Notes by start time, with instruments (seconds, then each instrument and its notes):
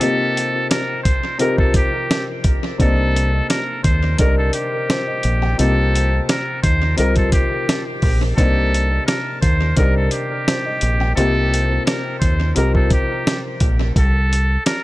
Already playing: grand piano G5
0.00 grand piano C3 A#3 C4 D#4 F4 G4, muted trumpet A4, closed hi-hat
0.37 closed hi-hat
0.70 muted trumpet A#4, snare, closed hi-hat
1.03 muted trumpet C5, kick, closed hi-hat
1.38 grand piano C3 C4 D#4 F4 G4 A#4, muted trumpet A#4, closed hi-hat
1.58 muted trumpet A4, kick
1.74 muted trumpet G4, kick, closed hi-hat
2.11 snare, closed hi-hat
2.44 kick, closed hi-hat
2.78 fingered electric bass C2, grand piano C3 A#3 C4 D4 D#4, muted trumpet A4, kick, closed hi-hat
3.16 closed hi-hat
3.49 muted trumpet A#4, snare, closed hi-hat
3.84 fingered electric bass D#2, muted trumpet C5, kick, closed hi-hat
4.18 fingered electric bass C2, grand piano C3 C4 D4 D#4 A#4, muted trumpet A#4, kick, closed hi-hat
4.38 muted trumpet A4
4.53 muted trumpet G4, closed hi-hat
4.89 grand piano C5, snare, closed hi-hat
5.07 grand piano D#5
5.23 fingered electric bass A#1, closed hi-hat
5.43 grand piano G5
5.58 fingered electric bass C2, grand piano C3 A#3 C4 D#4 F4 G4, muted trumpet A4, closed hi-hat
5.96 closed hi-hat
6.29 muted trumpet A#4, snare, closed hi-hat
6.63 fingered electric bass D#2, muted trumpet C5, kick, closed hi-hat
6.96 fingered electric bass C2, grand piano C3 C4 D#4 F4 G4 A#4, muted trumpet A#4, closed hi-hat
7.16 muted trumpet A4, kick, closed hi-hat
7.32 muted trumpet G4, kick, closed hi-hat
7.69 snare, closed hi-hat
8.02 fingered electric bass A#1, kick, open hi-hat
8.37 fingered electric bass C2, grand piano C3 A#3 C4 D4 D#4, muted trumpet A4, kick, closed hi-hat
8.74 closed hi-hat
9.06 muted trumpet A#4, snare, closed hi-hat
9.41 fingered electric bass D#2, muted trumpet C5, kick, closed hi-hat
9.76 fingered electric bass C2, grand piano C3 C4 D4 D#4 A#4, muted trumpet A#4, kick, closed hi-hat
9.96 muted trumpet A4
10.11 muted trumpet G4, closed hi-hat
10.47 grand piano C5, snare, closed hi-hat
10.66 grand piano D#5
10.81 fingered electric bass A#1, closed hi-hat
11.01 grand piano G5
11.15 fingered electric bass C2, grand piano C3 A#3 C4 D#4 F4 G4, muted trumpet A4, closed hi-hat
11.54 closed hi-hat
11.86 muted trumpet A#4, snare, closed hi-hat
12.20 fingered electric bass D#2, muted trumpet C5, kick, closed hi-hat
12.55 fingered electric bass C2, grand piano C3 C4 D#4 F4 G4 A#4, muted trumpet A#4, closed hi-hat
12.75 muted trumpet A4, kick
12.90 muted trumpet G4, kick, closed hi-hat
13.27 snare, closed hi-hat
13.60 fingered electric bass A#1, kick, closed hi-hat
13.96 fingered electric bass C2, muted trumpet A4, kick, closed hi-hat
14.33 closed hi-hat
14.66 muted trumpet A#4, snare, closed hi-hat